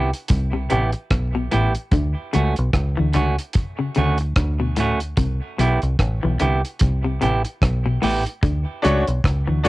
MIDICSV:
0, 0, Header, 1, 7, 480
1, 0, Start_track
1, 0, Key_signature, 2, "major"
1, 0, Tempo, 813008
1, 1135, Time_signature, 4, 2, 24, 8
1, 5717, End_track
2, 0, Start_track
2, 0, Title_t, "Grand piano"
2, 0, Program_c, 0, 0
2, 5208, Note_on_c, 0, 62, 96
2, 5213, Note_on_c, 0, 66, 78
2, 5216, Note_on_c, 0, 73, 96
2, 5318, Note_off_c, 0, 62, 0
2, 5321, Note_off_c, 0, 66, 0
2, 5322, Note_off_c, 0, 73, 0
2, 5690, Note_on_c, 0, 62, 92
2, 5693, Note_on_c, 0, 66, 84
2, 5697, Note_on_c, 0, 73, 95
2, 5717, Note_off_c, 0, 62, 0
2, 5717, Note_off_c, 0, 66, 0
2, 5717, Note_off_c, 0, 73, 0
2, 5717, End_track
3, 0, Start_track
3, 0, Title_t, "Clean electric guitar"
3, 0, Program_c, 1, 27
3, 0, Note_on_c, 1, 67, 89
3, 60, Note_off_c, 1, 67, 0
3, 412, Note_on_c, 1, 59, 83
3, 417, Note_on_c, 1, 64, 80
3, 422, Note_on_c, 1, 67, 83
3, 534, Note_off_c, 1, 59, 0
3, 537, Note_off_c, 1, 64, 0
3, 539, Note_off_c, 1, 67, 0
3, 894, Note_on_c, 1, 59, 83
3, 897, Note_on_c, 1, 64, 90
3, 904, Note_on_c, 1, 67, 96
3, 1015, Note_off_c, 1, 59, 0
3, 1017, Note_off_c, 1, 64, 0
3, 1020, Note_off_c, 1, 67, 0
3, 1379, Note_on_c, 1, 57, 79
3, 1382, Note_on_c, 1, 61, 83
3, 1386, Note_on_c, 1, 66, 92
3, 1498, Note_off_c, 1, 57, 0
3, 1499, Note_off_c, 1, 61, 0
3, 1501, Note_off_c, 1, 66, 0
3, 1855, Note_on_c, 1, 57, 72
3, 1860, Note_on_c, 1, 61, 85
3, 1866, Note_on_c, 1, 66, 94
3, 1976, Note_off_c, 1, 57, 0
3, 1978, Note_off_c, 1, 61, 0
3, 1981, Note_off_c, 1, 66, 0
3, 2342, Note_on_c, 1, 57, 84
3, 2347, Note_on_c, 1, 61, 84
3, 2352, Note_on_c, 1, 66, 101
3, 2459, Note_off_c, 1, 57, 0
3, 2461, Note_off_c, 1, 61, 0
3, 2464, Note_off_c, 1, 66, 0
3, 2827, Note_on_c, 1, 57, 95
3, 2832, Note_on_c, 1, 61, 89
3, 2836, Note_on_c, 1, 66, 91
3, 2941, Note_off_c, 1, 57, 0
3, 2944, Note_off_c, 1, 61, 0
3, 2946, Note_off_c, 1, 66, 0
3, 3300, Note_on_c, 1, 59, 95
3, 3306, Note_on_c, 1, 64, 104
3, 3310, Note_on_c, 1, 67, 88
3, 3418, Note_off_c, 1, 59, 0
3, 3421, Note_off_c, 1, 64, 0
3, 3423, Note_off_c, 1, 67, 0
3, 3778, Note_on_c, 1, 59, 78
3, 3782, Note_on_c, 1, 64, 80
3, 3788, Note_on_c, 1, 67, 94
3, 3897, Note_off_c, 1, 59, 0
3, 3899, Note_off_c, 1, 64, 0
3, 3902, Note_off_c, 1, 67, 0
3, 4259, Note_on_c, 1, 59, 68
3, 4263, Note_on_c, 1, 64, 79
3, 4265, Note_on_c, 1, 67, 95
3, 4377, Note_off_c, 1, 59, 0
3, 4379, Note_off_c, 1, 64, 0
3, 4380, Note_off_c, 1, 67, 0
3, 4733, Note_on_c, 1, 59, 86
3, 4739, Note_on_c, 1, 64, 84
3, 4744, Note_on_c, 1, 67, 100
3, 4854, Note_off_c, 1, 59, 0
3, 4857, Note_off_c, 1, 64, 0
3, 4860, Note_off_c, 1, 67, 0
3, 5213, Note_on_c, 1, 57, 80
3, 5220, Note_on_c, 1, 61, 92
3, 5224, Note_on_c, 1, 66, 106
3, 5334, Note_off_c, 1, 57, 0
3, 5338, Note_off_c, 1, 61, 0
3, 5340, Note_off_c, 1, 66, 0
3, 5695, Note_on_c, 1, 57, 82
3, 5699, Note_on_c, 1, 61, 96
3, 5717, Note_off_c, 1, 57, 0
3, 5717, Note_off_c, 1, 61, 0
3, 5717, End_track
4, 0, Start_track
4, 0, Title_t, "Clean electric guitar"
4, 0, Program_c, 2, 27
4, 314, Note_on_c, 2, 48, 69
4, 375, Note_off_c, 2, 48, 0
4, 416, Note_on_c, 2, 48, 72
4, 500, Note_off_c, 2, 48, 0
4, 796, Note_on_c, 2, 47, 77
4, 856, Note_off_c, 2, 47, 0
4, 897, Note_on_c, 2, 45, 85
4, 981, Note_off_c, 2, 45, 0
4, 1139, Note_on_c, 2, 50, 71
4, 1222, Note_off_c, 2, 50, 0
4, 1376, Note_on_c, 2, 49, 78
4, 1460, Note_off_c, 2, 49, 0
4, 1755, Note_on_c, 2, 52, 71
4, 1815, Note_off_c, 2, 52, 0
4, 1855, Note_on_c, 2, 50, 85
4, 1939, Note_off_c, 2, 50, 0
4, 2236, Note_on_c, 2, 49, 68
4, 2296, Note_off_c, 2, 49, 0
4, 2337, Note_on_c, 2, 49, 75
4, 2421, Note_off_c, 2, 49, 0
4, 2715, Note_on_c, 2, 47, 80
4, 2775, Note_off_c, 2, 47, 0
4, 2815, Note_on_c, 2, 45, 91
4, 2900, Note_off_c, 2, 45, 0
4, 3055, Note_on_c, 2, 48, 78
4, 3139, Note_off_c, 2, 48, 0
4, 3297, Note_on_c, 2, 47, 77
4, 3381, Note_off_c, 2, 47, 0
4, 3678, Note_on_c, 2, 52, 63
4, 3737, Note_off_c, 2, 52, 0
4, 3777, Note_on_c, 2, 50, 78
4, 3861, Note_off_c, 2, 50, 0
4, 4158, Note_on_c, 2, 48, 65
4, 4218, Note_off_c, 2, 48, 0
4, 4255, Note_on_c, 2, 48, 72
4, 4340, Note_off_c, 2, 48, 0
4, 4638, Note_on_c, 2, 47, 77
4, 4697, Note_off_c, 2, 47, 0
4, 4734, Note_on_c, 2, 45, 84
4, 4819, Note_off_c, 2, 45, 0
4, 4976, Note_on_c, 2, 50, 75
4, 5060, Note_off_c, 2, 50, 0
4, 5218, Note_on_c, 2, 49, 78
4, 5302, Note_off_c, 2, 49, 0
4, 5594, Note_on_c, 2, 52, 63
4, 5654, Note_off_c, 2, 52, 0
4, 5696, Note_on_c, 2, 50, 82
4, 5717, Note_off_c, 2, 50, 0
4, 5717, End_track
5, 0, Start_track
5, 0, Title_t, "Fingered electric bass"
5, 0, Program_c, 3, 33
5, 0, Note_on_c, 3, 36, 81
5, 66, Note_off_c, 3, 36, 0
5, 180, Note_on_c, 3, 36, 103
5, 397, Note_off_c, 3, 36, 0
5, 425, Note_on_c, 3, 33, 95
5, 548, Note_off_c, 3, 33, 0
5, 658, Note_on_c, 3, 35, 99
5, 876, Note_off_c, 3, 35, 0
5, 909, Note_on_c, 3, 33, 88
5, 1030, Note_off_c, 3, 33, 0
5, 1135, Note_on_c, 3, 38, 116
5, 1263, Note_off_c, 3, 38, 0
5, 1390, Note_on_c, 3, 37, 86
5, 1511, Note_off_c, 3, 37, 0
5, 1527, Note_on_c, 3, 35, 88
5, 1613, Note_off_c, 3, 35, 0
5, 1618, Note_on_c, 3, 37, 88
5, 1744, Note_off_c, 3, 37, 0
5, 1768, Note_on_c, 3, 38, 82
5, 1853, Note_off_c, 3, 38, 0
5, 1865, Note_on_c, 3, 37, 85
5, 1988, Note_off_c, 3, 37, 0
5, 2348, Note_on_c, 3, 38, 84
5, 2561, Note_off_c, 3, 38, 0
5, 2577, Note_on_c, 3, 38, 106
5, 3032, Note_off_c, 3, 38, 0
5, 3059, Note_on_c, 3, 36, 99
5, 3185, Note_off_c, 3, 36, 0
5, 3300, Note_on_c, 3, 35, 94
5, 3425, Note_off_c, 3, 35, 0
5, 3442, Note_on_c, 3, 36, 84
5, 3530, Note_off_c, 3, 36, 0
5, 3540, Note_on_c, 3, 33, 85
5, 3665, Note_off_c, 3, 33, 0
5, 3687, Note_on_c, 3, 35, 86
5, 3772, Note_off_c, 3, 35, 0
5, 3786, Note_on_c, 3, 36, 83
5, 3908, Note_off_c, 3, 36, 0
5, 4025, Note_on_c, 3, 36, 98
5, 4239, Note_off_c, 3, 36, 0
5, 4268, Note_on_c, 3, 33, 91
5, 4390, Note_off_c, 3, 33, 0
5, 4501, Note_on_c, 3, 35, 94
5, 4717, Note_off_c, 3, 35, 0
5, 4744, Note_on_c, 3, 33, 86
5, 4867, Note_off_c, 3, 33, 0
5, 4977, Note_on_c, 3, 38, 111
5, 5103, Note_off_c, 3, 38, 0
5, 5225, Note_on_c, 3, 37, 94
5, 5348, Note_off_c, 3, 37, 0
5, 5361, Note_on_c, 3, 35, 82
5, 5449, Note_off_c, 3, 35, 0
5, 5457, Note_on_c, 3, 37, 89
5, 5583, Note_off_c, 3, 37, 0
5, 5597, Note_on_c, 3, 38, 84
5, 5687, Note_off_c, 3, 38, 0
5, 5699, Note_on_c, 3, 37, 91
5, 5717, Note_off_c, 3, 37, 0
5, 5717, End_track
6, 0, Start_track
6, 0, Title_t, "Muted clean electric guitar strokes"
6, 550, Note_on_c, 9, 29, 48
6, 609, Note_off_c, 9, 29, 0
6, 2485, Note_on_c, 9, 29, 49
6, 2544, Note_off_c, 9, 29, 0
6, 4405, Note_on_c, 9, 29, 30
6, 4464, Note_off_c, 9, 29, 0
6, 5717, End_track
7, 0, Start_track
7, 0, Title_t, "Drums"
7, 80, Note_on_c, 9, 42, 53
7, 139, Note_off_c, 9, 42, 0
7, 167, Note_on_c, 9, 42, 96
7, 178, Note_on_c, 9, 36, 113
7, 226, Note_off_c, 9, 42, 0
7, 237, Note_off_c, 9, 36, 0
7, 413, Note_on_c, 9, 42, 61
7, 472, Note_off_c, 9, 42, 0
7, 546, Note_on_c, 9, 42, 44
7, 605, Note_off_c, 9, 42, 0
7, 652, Note_on_c, 9, 42, 87
7, 654, Note_on_c, 9, 36, 114
7, 655, Note_on_c, 9, 37, 121
7, 711, Note_off_c, 9, 42, 0
7, 713, Note_off_c, 9, 36, 0
7, 714, Note_off_c, 9, 37, 0
7, 894, Note_on_c, 9, 42, 78
7, 953, Note_off_c, 9, 42, 0
7, 1031, Note_on_c, 9, 42, 51
7, 1090, Note_off_c, 9, 42, 0
7, 1130, Note_on_c, 9, 42, 83
7, 1132, Note_on_c, 9, 36, 112
7, 1189, Note_off_c, 9, 42, 0
7, 1191, Note_off_c, 9, 36, 0
7, 1378, Note_on_c, 9, 42, 74
7, 1437, Note_off_c, 9, 42, 0
7, 1512, Note_on_c, 9, 42, 48
7, 1571, Note_off_c, 9, 42, 0
7, 1614, Note_on_c, 9, 36, 108
7, 1615, Note_on_c, 9, 37, 105
7, 1615, Note_on_c, 9, 42, 71
7, 1673, Note_off_c, 9, 36, 0
7, 1674, Note_off_c, 9, 37, 0
7, 1674, Note_off_c, 9, 42, 0
7, 1850, Note_on_c, 9, 42, 72
7, 1909, Note_off_c, 9, 42, 0
7, 1999, Note_on_c, 9, 42, 53
7, 2058, Note_off_c, 9, 42, 0
7, 2086, Note_on_c, 9, 42, 87
7, 2099, Note_on_c, 9, 36, 114
7, 2145, Note_off_c, 9, 42, 0
7, 2158, Note_off_c, 9, 36, 0
7, 2330, Note_on_c, 9, 42, 56
7, 2389, Note_off_c, 9, 42, 0
7, 2466, Note_on_c, 9, 42, 47
7, 2525, Note_off_c, 9, 42, 0
7, 2573, Note_on_c, 9, 42, 86
7, 2575, Note_on_c, 9, 36, 116
7, 2575, Note_on_c, 9, 37, 114
7, 2632, Note_off_c, 9, 42, 0
7, 2634, Note_off_c, 9, 36, 0
7, 2634, Note_off_c, 9, 37, 0
7, 2813, Note_on_c, 9, 42, 80
7, 2872, Note_off_c, 9, 42, 0
7, 2953, Note_on_c, 9, 42, 50
7, 3012, Note_off_c, 9, 42, 0
7, 3052, Note_on_c, 9, 42, 83
7, 3055, Note_on_c, 9, 36, 117
7, 3111, Note_off_c, 9, 42, 0
7, 3114, Note_off_c, 9, 36, 0
7, 3302, Note_on_c, 9, 42, 80
7, 3361, Note_off_c, 9, 42, 0
7, 3436, Note_on_c, 9, 42, 48
7, 3495, Note_off_c, 9, 42, 0
7, 3537, Note_on_c, 9, 36, 111
7, 3539, Note_on_c, 9, 37, 105
7, 3539, Note_on_c, 9, 42, 78
7, 3596, Note_off_c, 9, 36, 0
7, 3598, Note_off_c, 9, 37, 0
7, 3598, Note_off_c, 9, 42, 0
7, 3775, Note_on_c, 9, 42, 73
7, 3834, Note_off_c, 9, 42, 0
7, 3924, Note_on_c, 9, 42, 52
7, 3983, Note_off_c, 9, 42, 0
7, 4011, Note_on_c, 9, 42, 91
7, 4021, Note_on_c, 9, 36, 122
7, 4070, Note_off_c, 9, 42, 0
7, 4080, Note_off_c, 9, 36, 0
7, 4259, Note_on_c, 9, 42, 59
7, 4318, Note_off_c, 9, 42, 0
7, 4396, Note_on_c, 9, 42, 51
7, 4455, Note_off_c, 9, 42, 0
7, 4497, Note_on_c, 9, 36, 106
7, 4501, Note_on_c, 9, 42, 84
7, 4503, Note_on_c, 9, 37, 109
7, 4556, Note_off_c, 9, 36, 0
7, 4560, Note_off_c, 9, 42, 0
7, 4562, Note_off_c, 9, 37, 0
7, 4739, Note_on_c, 9, 46, 79
7, 4798, Note_off_c, 9, 46, 0
7, 4878, Note_on_c, 9, 42, 54
7, 4937, Note_off_c, 9, 42, 0
7, 4975, Note_on_c, 9, 36, 116
7, 4975, Note_on_c, 9, 42, 82
7, 5034, Note_off_c, 9, 36, 0
7, 5035, Note_off_c, 9, 42, 0
7, 5222, Note_on_c, 9, 42, 75
7, 5281, Note_off_c, 9, 42, 0
7, 5357, Note_on_c, 9, 42, 51
7, 5416, Note_off_c, 9, 42, 0
7, 5455, Note_on_c, 9, 36, 112
7, 5463, Note_on_c, 9, 37, 98
7, 5463, Note_on_c, 9, 42, 78
7, 5515, Note_off_c, 9, 36, 0
7, 5522, Note_off_c, 9, 37, 0
7, 5522, Note_off_c, 9, 42, 0
7, 5696, Note_on_c, 9, 42, 70
7, 5717, Note_off_c, 9, 42, 0
7, 5717, End_track
0, 0, End_of_file